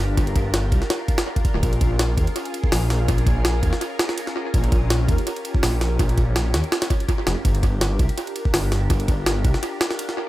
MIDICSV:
0, 0, Header, 1, 4, 480
1, 0, Start_track
1, 0, Tempo, 363636
1, 231, Time_signature, 4, 2, 24, 8
1, 13579, End_track
2, 0, Start_track
2, 0, Title_t, "String machine"
2, 0, Program_c, 0, 50
2, 0, Note_on_c, 0, 62, 88
2, 0, Note_on_c, 0, 65, 82
2, 0, Note_on_c, 0, 67, 83
2, 0, Note_on_c, 0, 70, 99
2, 2098, Note_off_c, 0, 67, 0
2, 2099, Note_off_c, 0, 62, 0
2, 2153, Note_on_c, 0, 61, 91
2, 2154, Note_on_c, 0, 68, 84
2, 5954, Note_off_c, 0, 68, 0
2, 5994, Note_on_c, 0, 67, 81
2, 9778, Note_off_c, 0, 65, 0
2, 9778, Note_off_c, 0, 70, 0
2, 9779, Note_off_c, 0, 61, 0
2, 9838, Note_on_c, 0, 70, 93
2, 9839, Note_on_c, 0, 62, 91
2, 9841, Note_on_c, 0, 65, 83
2, 13579, Note_off_c, 0, 62, 0
2, 13579, Note_off_c, 0, 65, 0
2, 13579, Note_off_c, 0, 67, 0
2, 13579, Note_off_c, 0, 70, 0
2, 13579, End_track
3, 0, Start_track
3, 0, Title_t, "Detuned saw bass"
3, 0, Program_c, 1, 39
3, 0, Note_on_c, 1, 31, 95
3, 213, Note_off_c, 1, 31, 0
3, 230, Note_on_c, 1, 31, 95
3, 950, Note_on_c, 1, 36, 85
3, 970, Note_off_c, 1, 31, 0
3, 1066, Note_off_c, 1, 36, 0
3, 2037, Note_on_c, 1, 26, 96
3, 2139, Note_off_c, 1, 26, 0
3, 2151, Note_on_c, 1, 34, 97
3, 2871, Note_on_c, 1, 39, 81
3, 2891, Note_off_c, 1, 34, 0
3, 2986, Note_off_c, 1, 39, 0
3, 3592, Note_on_c, 1, 34, 93
3, 4053, Note_off_c, 1, 34, 0
3, 4070, Note_on_c, 1, 34, 98
3, 4790, Note_on_c, 1, 39, 80
3, 4810, Note_off_c, 1, 34, 0
3, 4906, Note_off_c, 1, 39, 0
3, 5992, Note_on_c, 1, 34, 99
3, 6712, Note_on_c, 1, 39, 77
3, 6731, Note_off_c, 1, 34, 0
3, 6827, Note_off_c, 1, 39, 0
3, 7434, Note_on_c, 1, 34, 92
3, 7895, Note_off_c, 1, 34, 0
3, 7913, Note_on_c, 1, 34, 99
3, 8631, Note_on_c, 1, 39, 77
3, 8651, Note_off_c, 1, 34, 0
3, 8746, Note_off_c, 1, 39, 0
3, 9592, Note_on_c, 1, 29, 99
3, 9707, Note_off_c, 1, 29, 0
3, 9832, Note_on_c, 1, 31, 98
3, 10552, Note_on_c, 1, 36, 79
3, 10572, Note_off_c, 1, 31, 0
3, 10667, Note_off_c, 1, 36, 0
3, 11271, Note_on_c, 1, 31, 90
3, 11733, Note_off_c, 1, 31, 0
3, 11748, Note_on_c, 1, 31, 98
3, 12470, Note_on_c, 1, 36, 80
3, 12490, Note_off_c, 1, 31, 0
3, 12586, Note_off_c, 1, 36, 0
3, 13579, End_track
4, 0, Start_track
4, 0, Title_t, "Drums"
4, 230, Note_on_c, 9, 36, 113
4, 231, Note_on_c, 9, 51, 84
4, 358, Note_off_c, 9, 51, 0
4, 358, Note_on_c, 9, 51, 42
4, 362, Note_off_c, 9, 36, 0
4, 470, Note_off_c, 9, 51, 0
4, 470, Note_on_c, 9, 36, 99
4, 470, Note_on_c, 9, 51, 70
4, 602, Note_off_c, 9, 36, 0
4, 602, Note_off_c, 9, 51, 0
4, 710, Note_on_c, 9, 38, 115
4, 710, Note_on_c, 9, 51, 90
4, 842, Note_off_c, 9, 38, 0
4, 842, Note_off_c, 9, 51, 0
4, 950, Note_on_c, 9, 36, 101
4, 951, Note_on_c, 9, 51, 69
4, 1079, Note_on_c, 9, 38, 47
4, 1082, Note_off_c, 9, 36, 0
4, 1083, Note_off_c, 9, 51, 0
4, 1190, Note_off_c, 9, 38, 0
4, 1190, Note_on_c, 9, 38, 99
4, 1190, Note_on_c, 9, 51, 78
4, 1322, Note_off_c, 9, 38, 0
4, 1322, Note_off_c, 9, 51, 0
4, 1430, Note_on_c, 9, 36, 90
4, 1431, Note_on_c, 9, 51, 66
4, 1557, Note_off_c, 9, 51, 0
4, 1557, Note_on_c, 9, 38, 106
4, 1557, Note_on_c, 9, 51, 75
4, 1562, Note_off_c, 9, 36, 0
4, 1689, Note_off_c, 9, 38, 0
4, 1689, Note_off_c, 9, 51, 0
4, 1799, Note_on_c, 9, 36, 82
4, 1800, Note_on_c, 9, 51, 59
4, 1911, Note_off_c, 9, 36, 0
4, 1911, Note_off_c, 9, 51, 0
4, 1911, Note_on_c, 9, 36, 91
4, 1911, Note_on_c, 9, 51, 64
4, 2043, Note_off_c, 9, 36, 0
4, 2043, Note_off_c, 9, 51, 0
4, 2151, Note_on_c, 9, 36, 104
4, 2151, Note_on_c, 9, 51, 87
4, 2280, Note_off_c, 9, 51, 0
4, 2280, Note_on_c, 9, 51, 45
4, 2283, Note_off_c, 9, 36, 0
4, 2390, Note_off_c, 9, 51, 0
4, 2390, Note_on_c, 9, 51, 72
4, 2391, Note_on_c, 9, 36, 97
4, 2522, Note_off_c, 9, 51, 0
4, 2523, Note_off_c, 9, 36, 0
4, 2632, Note_on_c, 9, 38, 125
4, 2632, Note_on_c, 9, 51, 93
4, 2764, Note_off_c, 9, 38, 0
4, 2764, Note_off_c, 9, 51, 0
4, 2871, Note_on_c, 9, 36, 98
4, 2872, Note_on_c, 9, 51, 71
4, 3001, Note_off_c, 9, 51, 0
4, 3001, Note_on_c, 9, 51, 42
4, 3003, Note_off_c, 9, 36, 0
4, 3112, Note_off_c, 9, 51, 0
4, 3112, Note_on_c, 9, 51, 88
4, 3240, Note_off_c, 9, 51, 0
4, 3240, Note_on_c, 9, 51, 44
4, 3353, Note_off_c, 9, 51, 0
4, 3353, Note_on_c, 9, 51, 69
4, 3479, Note_on_c, 9, 36, 91
4, 3485, Note_off_c, 9, 51, 0
4, 3591, Note_on_c, 9, 38, 120
4, 3591, Note_on_c, 9, 46, 86
4, 3611, Note_off_c, 9, 36, 0
4, 3723, Note_off_c, 9, 38, 0
4, 3723, Note_off_c, 9, 46, 0
4, 3832, Note_on_c, 9, 38, 58
4, 3832, Note_on_c, 9, 51, 70
4, 3964, Note_off_c, 9, 38, 0
4, 3964, Note_off_c, 9, 51, 0
4, 4071, Note_on_c, 9, 36, 105
4, 4071, Note_on_c, 9, 51, 89
4, 4200, Note_off_c, 9, 51, 0
4, 4200, Note_on_c, 9, 51, 43
4, 4203, Note_off_c, 9, 36, 0
4, 4311, Note_on_c, 9, 36, 95
4, 4312, Note_off_c, 9, 51, 0
4, 4312, Note_on_c, 9, 51, 68
4, 4443, Note_off_c, 9, 36, 0
4, 4444, Note_off_c, 9, 51, 0
4, 4551, Note_on_c, 9, 38, 125
4, 4551, Note_on_c, 9, 51, 92
4, 4683, Note_off_c, 9, 38, 0
4, 4683, Note_off_c, 9, 51, 0
4, 4790, Note_on_c, 9, 36, 98
4, 4790, Note_on_c, 9, 51, 73
4, 4920, Note_on_c, 9, 38, 51
4, 4922, Note_off_c, 9, 36, 0
4, 4922, Note_off_c, 9, 51, 0
4, 5033, Note_on_c, 9, 51, 89
4, 5052, Note_off_c, 9, 38, 0
4, 5165, Note_off_c, 9, 51, 0
4, 5272, Note_on_c, 9, 38, 127
4, 5272, Note_on_c, 9, 51, 69
4, 5400, Note_off_c, 9, 38, 0
4, 5400, Note_on_c, 9, 38, 58
4, 5404, Note_off_c, 9, 51, 0
4, 5512, Note_on_c, 9, 51, 94
4, 5532, Note_off_c, 9, 38, 0
4, 5640, Note_on_c, 9, 38, 50
4, 5644, Note_off_c, 9, 51, 0
4, 5772, Note_off_c, 9, 38, 0
4, 5992, Note_on_c, 9, 36, 114
4, 5993, Note_on_c, 9, 51, 85
4, 6120, Note_off_c, 9, 51, 0
4, 6120, Note_on_c, 9, 51, 43
4, 6124, Note_off_c, 9, 36, 0
4, 6231, Note_off_c, 9, 51, 0
4, 6231, Note_on_c, 9, 51, 74
4, 6232, Note_on_c, 9, 36, 103
4, 6363, Note_off_c, 9, 51, 0
4, 6364, Note_off_c, 9, 36, 0
4, 6473, Note_on_c, 9, 38, 117
4, 6473, Note_on_c, 9, 51, 89
4, 6605, Note_off_c, 9, 38, 0
4, 6605, Note_off_c, 9, 51, 0
4, 6712, Note_on_c, 9, 36, 100
4, 6714, Note_on_c, 9, 51, 71
4, 6842, Note_off_c, 9, 51, 0
4, 6842, Note_on_c, 9, 51, 41
4, 6844, Note_off_c, 9, 36, 0
4, 6953, Note_off_c, 9, 51, 0
4, 6953, Note_on_c, 9, 51, 91
4, 7081, Note_off_c, 9, 51, 0
4, 7081, Note_on_c, 9, 51, 43
4, 7192, Note_off_c, 9, 51, 0
4, 7192, Note_on_c, 9, 51, 71
4, 7320, Note_on_c, 9, 36, 98
4, 7324, Note_off_c, 9, 51, 0
4, 7431, Note_on_c, 9, 38, 127
4, 7431, Note_on_c, 9, 46, 85
4, 7452, Note_off_c, 9, 36, 0
4, 7563, Note_off_c, 9, 38, 0
4, 7563, Note_off_c, 9, 46, 0
4, 7672, Note_on_c, 9, 38, 59
4, 7672, Note_on_c, 9, 51, 70
4, 7804, Note_off_c, 9, 38, 0
4, 7804, Note_off_c, 9, 51, 0
4, 7912, Note_on_c, 9, 36, 109
4, 7912, Note_on_c, 9, 51, 85
4, 8042, Note_off_c, 9, 51, 0
4, 8042, Note_on_c, 9, 51, 44
4, 8044, Note_off_c, 9, 36, 0
4, 8152, Note_off_c, 9, 51, 0
4, 8152, Note_on_c, 9, 36, 86
4, 8152, Note_on_c, 9, 51, 61
4, 8284, Note_off_c, 9, 36, 0
4, 8284, Note_off_c, 9, 51, 0
4, 8393, Note_on_c, 9, 38, 123
4, 8393, Note_on_c, 9, 51, 92
4, 8525, Note_off_c, 9, 38, 0
4, 8525, Note_off_c, 9, 51, 0
4, 8633, Note_on_c, 9, 38, 110
4, 8633, Note_on_c, 9, 51, 83
4, 8762, Note_off_c, 9, 51, 0
4, 8762, Note_on_c, 9, 51, 38
4, 8765, Note_off_c, 9, 38, 0
4, 8872, Note_off_c, 9, 51, 0
4, 8872, Note_on_c, 9, 38, 101
4, 8872, Note_on_c, 9, 51, 76
4, 9001, Note_off_c, 9, 38, 0
4, 9001, Note_off_c, 9, 51, 0
4, 9001, Note_on_c, 9, 38, 102
4, 9001, Note_on_c, 9, 51, 78
4, 9113, Note_off_c, 9, 51, 0
4, 9113, Note_on_c, 9, 36, 105
4, 9113, Note_on_c, 9, 51, 79
4, 9133, Note_off_c, 9, 38, 0
4, 9244, Note_off_c, 9, 51, 0
4, 9244, Note_on_c, 9, 51, 40
4, 9245, Note_off_c, 9, 36, 0
4, 9353, Note_on_c, 9, 36, 92
4, 9354, Note_off_c, 9, 51, 0
4, 9354, Note_on_c, 9, 51, 68
4, 9485, Note_off_c, 9, 36, 0
4, 9486, Note_off_c, 9, 51, 0
4, 9593, Note_on_c, 9, 38, 99
4, 9593, Note_on_c, 9, 51, 76
4, 9725, Note_off_c, 9, 38, 0
4, 9725, Note_off_c, 9, 51, 0
4, 9833, Note_on_c, 9, 36, 110
4, 9833, Note_on_c, 9, 51, 90
4, 9961, Note_off_c, 9, 51, 0
4, 9961, Note_on_c, 9, 51, 47
4, 9965, Note_off_c, 9, 36, 0
4, 10072, Note_off_c, 9, 51, 0
4, 10072, Note_on_c, 9, 36, 102
4, 10072, Note_on_c, 9, 51, 68
4, 10204, Note_off_c, 9, 36, 0
4, 10204, Note_off_c, 9, 51, 0
4, 10313, Note_on_c, 9, 38, 118
4, 10313, Note_on_c, 9, 51, 89
4, 10445, Note_off_c, 9, 38, 0
4, 10445, Note_off_c, 9, 51, 0
4, 10552, Note_on_c, 9, 36, 93
4, 10552, Note_on_c, 9, 51, 69
4, 10681, Note_off_c, 9, 51, 0
4, 10681, Note_on_c, 9, 51, 45
4, 10684, Note_off_c, 9, 36, 0
4, 10792, Note_off_c, 9, 51, 0
4, 10792, Note_on_c, 9, 51, 86
4, 10919, Note_off_c, 9, 51, 0
4, 10919, Note_on_c, 9, 51, 42
4, 11031, Note_off_c, 9, 51, 0
4, 11031, Note_on_c, 9, 51, 73
4, 11159, Note_on_c, 9, 36, 95
4, 11163, Note_off_c, 9, 51, 0
4, 11269, Note_on_c, 9, 38, 127
4, 11269, Note_on_c, 9, 46, 82
4, 11291, Note_off_c, 9, 36, 0
4, 11401, Note_off_c, 9, 38, 0
4, 11401, Note_off_c, 9, 46, 0
4, 11509, Note_on_c, 9, 38, 58
4, 11509, Note_on_c, 9, 51, 68
4, 11641, Note_off_c, 9, 38, 0
4, 11641, Note_off_c, 9, 51, 0
4, 11748, Note_on_c, 9, 51, 90
4, 11750, Note_on_c, 9, 36, 104
4, 11877, Note_off_c, 9, 51, 0
4, 11877, Note_on_c, 9, 51, 46
4, 11882, Note_off_c, 9, 36, 0
4, 11989, Note_off_c, 9, 51, 0
4, 11989, Note_on_c, 9, 51, 72
4, 11990, Note_on_c, 9, 36, 100
4, 12121, Note_off_c, 9, 51, 0
4, 12122, Note_off_c, 9, 36, 0
4, 12228, Note_on_c, 9, 38, 120
4, 12228, Note_on_c, 9, 51, 90
4, 12360, Note_off_c, 9, 38, 0
4, 12360, Note_off_c, 9, 51, 0
4, 12468, Note_on_c, 9, 51, 72
4, 12470, Note_on_c, 9, 36, 103
4, 12596, Note_on_c, 9, 38, 50
4, 12600, Note_off_c, 9, 51, 0
4, 12602, Note_off_c, 9, 36, 0
4, 12708, Note_on_c, 9, 51, 89
4, 12728, Note_off_c, 9, 38, 0
4, 12840, Note_off_c, 9, 51, 0
4, 12947, Note_on_c, 9, 38, 121
4, 12947, Note_on_c, 9, 51, 74
4, 13076, Note_off_c, 9, 38, 0
4, 13076, Note_on_c, 9, 38, 57
4, 13079, Note_off_c, 9, 51, 0
4, 13187, Note_on_c, 9, 51, 98
4, 13208, Note_off_c, 9, 38, 0
4, 13316, Note_on_c, 9, 38, 53
4, 13319, Note_off_c, 9, 51, 0
4, 13448, Note_off_c, 9, 38, 0
4, 13579, End_track
0, 0, End_of_file